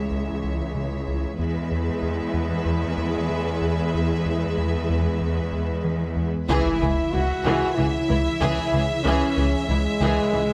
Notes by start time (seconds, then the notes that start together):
Already playing: C#2 E3 G#3 E4 G#4 C#5 E5
0.11 C#2
0.44 C#2
0.75 C#3
1.07 C#2
1.38 E2 E3 G#3 E4 G#4 B4 E5
1.71 E2
2.03 E2
2.34 E2
2.66 E2
2.98 E2
3.30 E3
3.61 E2
3.94 E2
4.26 E2
4.58 E2
4.90 E2
5.21 E2
5.53 E2
5.84 E3
6.17 E2
6.49 C#2 E3 E4 G#4 C#5 E5, impact
6.81 C#2 E3 G#4
7.12 C#2 E3 E4 F#4
7.45 C#2 E3 G#4
7.75 C#2 C#3 E3 E4 G#4
8.09 C#2 E3 E4
8.41 C#2 E3 G#4
8.73 C#2 C#3 E3 G#4
9.04 C#2 E3 C#4 G#4
9.37 C#2 E3 G#4
9.68 C#2 E3 G#3 E4
10.01 C#2 E3 G#4
10.33 C#2 C#3 E3 G#4